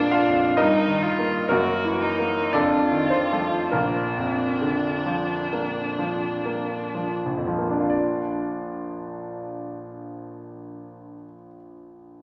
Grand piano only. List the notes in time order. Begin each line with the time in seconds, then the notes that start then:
Already playing: A#1 F2 F3 D4 F4 F5
0.00 A#3
0.11 F4 F5
0.28 F2
0.57 G2 D#4 A#4 D#5
0.88 D#3
1.19 A#3
1.49 F#2 A#3 F#4 A#4
1.84 E3
2.19 A#3
2.53 F2 D4 A4 D5
2.92 D#3
3.10 C4 C5
3.33 F3 A3
3.72 A#1 A#3 F4 A#4
4.18 F2
4.61 D3
5.06 F3
5.53 A#3
5.99 F3
6.45 A#3
6.94 F3
7.26 A#1
7.37 F2
7.45 F2 F3
7.58 A#3
7.69 D4
7.80 F4
7.90 D5